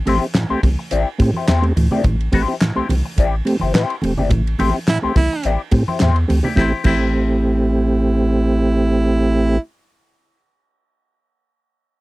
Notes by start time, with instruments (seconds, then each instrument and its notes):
0.06 analog synth bass A1, tonewheel organ A3 C4 G4, clean electric guitar C4 E4 G4 C5, open hi-hat, ride bell, high conga
0.21 tonewheel organ C4 G4
0.34 tonewheel organ A2 E3, muted clean electric guitar stroke, snare, clap, hi-hat pedal, ride bell, muted conga, high conga
0.49 analog synth bass C2, tonewheel organ A3 C4 G4, clean electric guitar C4 E4 G4 C5
0.63 analog synth bass C2, tonewheel organ C4 G4, kick, open hi-hat, ride bell, high conga, low conga
0.79 muted clean electric guitar stroke
0.91 analog synth bass A1, clean electric guitar C4 E4 G4 D5, hi-hat pedal, ride bell, muted conga
1.18 analog synth bass A2, tonewheel organ A3 C4 G4, muted clean electric guitar stroke, kick, open hi-hat, ride bell
1.34 clean electric guitar C4 E4 G4 C5, high conga
1.48 analog synth bass E2, clean electric guitar C4 E4 G4 C5, snare, clap, hi-hat pedal, ride bell
1.62 tonewheel organ A3 C4 G4, ride bell
1.76 analog synth bass D2, tonewheel organ A2 E3, muted clean electric guitar stroke, open hi-hat, ride bell, muted conga, high conga
1.91 tonewheel organ A3 C4 G4, clean electric guitar C4 E4 G4 D5, low conga
2.04 analog synth bass A1, tonewheel organ A2 E3, kick, hi-hat pedal, ride bell, muted conga, low conga
2.21 ride bell
2.32 analog synth bass A1, tonewheel organ A3 C4 G4, clean electric guitar C4 E4 G4 C5, kick, open hi-hat, ride bell, high conga
2.48 tonewheel organ C4 G4
2.61 tonewheel organ A2 E3, muted clean electric guitar stroke, snare, clap, hi-hat pedal, ride bell, muted conga, high conga
2.75 analog synth bass C2, tonewheel organ A3 C4 G4, clean electric guitar C4 E4 G4 C5
2.89 analog synth bass C2, tonewheel organ C4 G4, open hi-hat, ride bell, muted conga, high conga, low conga
3.05 muted clean electric guitar stroke
3.16 analog synth bass A1, clean electric guitar C4 E4 G4 D5, kick, hi-hat pedal, ride bell, muted conga
3.45 tonewheel organ A3 C4 G4, muted clean electric guitar stroke, open hi-hat, ride bell, muted conga
3.60 analog synth bass G1, clean electric guitar C4 E4 G4 C5, high conga
3.73 tonewheel organ A2 E3, clean electric guitar C4 E4 G4 C5, snare, clap, hi-hat pedal, ride bell, muted conga
3.90 ride bell
4.02 analog synth bass E1, tonewheel organ A3 C4 G4, muted clean electric guitar stroke, open hi-hat, ride bell, muted conga, high conga
4.17 analog synth bass G1, tonewheel organ C4 G4, clean electric guitar C4 E4 G4 D5, low conga
4.29 analog synth bass A1, tonewheel organ A2 E3, kick, hi-hat pedal, ride bell, low conga
4.47 ride bell
4.59 analog synth bass A1, tonewheel organ A3 C4 G4, clean electric guitar C4 E4 G4 C5, open hi-hat, ride bell, muted conga, high conga
4.74 tonewheel organ C4 G4
4.88 tonewheel organ A2 E3, baritone saxophone E4, muted clean electric guitar stroke, snare, clap, hi-hat pedal, ride bell, high conga
5.02 analog synth bass C2, tonewheel organ A3 C4 G4, clean electric guitar C4 E4 G4 C5
5.15 analog synth bass C2, tonewheel organ C4 G4, baritone saxophone E4, kick, open hi-hat, ride bell, muted conga, high conga, low conga
5.33 muted clean electric guitar stroke
5.43 analog synth bass A1, clean electric guitar C4 E4 G4 D5, hi-hat pedal, ride bell
5.71 analog synth bass A2, tonewheel organ A3 C4 G4, muted clean electric guitar stroke, kick, open hi-hat, ride bell, muted conga
5.88 clean electric guitar C4 E4 G4 C5, high conga
6.00 analog synth bass E2, tonewheel organ A2 E3, clean electric guitar C4 E4 G4 C5, snare, clap, hi-hat pedal, ride bell, muted conga
6.16 ride bell
6.28 analog synth bass D2, tonewheel organ A3 C4 G4, muted clean electric guitar stroke, open hi-hat, ride bell, muted conga, high conga
6.43 tonewheel organ C4 G4, clean electric guitar C4 E4 G4 D5, low conga
6.56 analog synth bass A1, tonewheel organ A3 C4 G4, clean electric guitar C4 E4 G4, baritone saxophone E4, kick, snare, high conga
6.61 clean electric guitar C5
6.84 analog synth bass A1, tonewheel organ A3 C4 G4, clean electric guitar C4 E4, baritone saxophone E4, kick, crash, high conga
6.88 clean electric guitar G4 C5